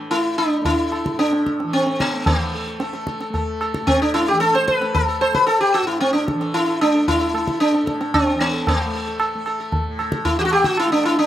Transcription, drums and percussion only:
0.11 tabla tin
0.38 tabla na
0.65 tabla tin, tabla ge
0.92 tabla na
1.06 tabla ke
1.19 tabla te
1.33 tabla te
1.46 tabla ke
1.60 tabla te
1.74 tabla te
1.87 tabla te
2.00 tabla ke
2.13 tabla te
2.26 tabla tin, tabla ge
2.80 tabla te
2.93 tabla te
3.07 tabla ke
3.21 tabla te
3.34 tabla tin, tabla ge
3.61 tabla na
3.74 tabla ke
3.87 tabla tin, tabla ge
4.14 tabla na
4.41 tabla te
4.55 tabla te
4.68 tabla ke
4.82 tabla te
4.95 tabla tin, tabla ge
5.21 tabla na
5.35 tabla ke
5.48 tabla tin
5.75 tabla na
6.01 tabla te
6.15 tabla te
6.28 tabla ke
6.41 tabla te
6.54 tabla tin
6.81 tabla na
7.08 tabla tin, tabla ge
7.35 tabla na
7.48 tabla ke
7.61 tabla te
7.74 tabla te
7.87 tabla ke
8.01 tabla te
8.14 tabla na, tabla ge
8.40 tabla te
8.67 tabla tin, tabla ge
9.20 tabla na
9.46 tabla na
9.72 tabla tin, tabla ge
9.99 tabla na
10.12 tabla ke
10.25 tabla tin, tabla ge
10.51 tabla na
10.64 tabla ke
10.77 tabla na
11.04 tabla na

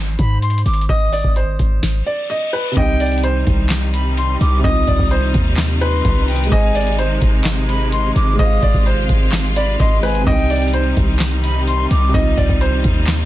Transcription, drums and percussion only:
0.19 kick, closed hi-hat
0.42 closed hi-hat
0.50 closed hi-hat
0.58 closed hi-hat
0.66 closed hi-hat
0.74 closed hi-hat
0.81 closed hi-hat
0.89 kick, closed hi-hat
1.13 open hi-hat
1.24 kick
1.36 closed hi-hat
1.59 kick, closed hi-hat
1.83 kick, snare
2.77 kick, closed hi-hat
3.00 closed hi-hat
3.06 closed hi-hat
3.12 closed hi-hat
3.18 closed hi-hat
3.24 closed hi-hat
3.47 kick, closed hi-hat
3.70 snare, clap, closed hi-hat
3.94 closed hi-hat
4.17 closed hi-hat
4.41 closed hi-hat
4.64 kick, closed hi-hat
4.88 kick, closed hi-hat
4.99 kick
5.11 closed hi-hat
5.34 kick, closed hi-hat
5.57 snare, clap, closed hi-hat
5.81 closed hi-hat
6.05 kick, closed hi-hat
6.28 closed hi-hat, open hi-hat
6.36 closed hi-hat
6.44 closed hi-hat
6.52 kick, closed hi-hat
6.75 closed hi-hat
6.81 closed hi-hat
6.87 closed hi-hat
6.93 closed hi-hat
6.98 closed hi-hat
7.22 kick, closed hi-hat
7.45 snare, clap, closed hi-hat
7.69 closed hi-hat
7.92 closed hi-hat
8.16 closed hi-hat
8.39 kick, closed hi-hat
8.62 kick, closed hi-hat
8.74 kick
8.86 closed hi-hat
9.09 kick, closed hi-hat
9.32 snare, clap, closed hi-hat
9.56 closed hi-hat
9.80 kick, closed hi-hat
10.03 closed hi-hat, open hi-hat
10.15 closed hi-hat
10.27 kick, closed hi-hat
10.50 closed hi-hat
10.56 closed hi-hat
10.62 closed hi-hat
10.68 closed hi-hat
10.74 closed hi-hat
10.97 kick, closed hi-hat
11.20 snare, clap, closed hi-hat
11.44 closed hi-hat
11.67 closed hi-hat
11.91 closed hi-hat
12.14 kick, closed hi-hat
12.37 kick, closed hi-hat
12.49 kick
12.61 closed hi-hat
12.84 kick, closed hi-hat
13.07 snare, clap, closed hi-hat

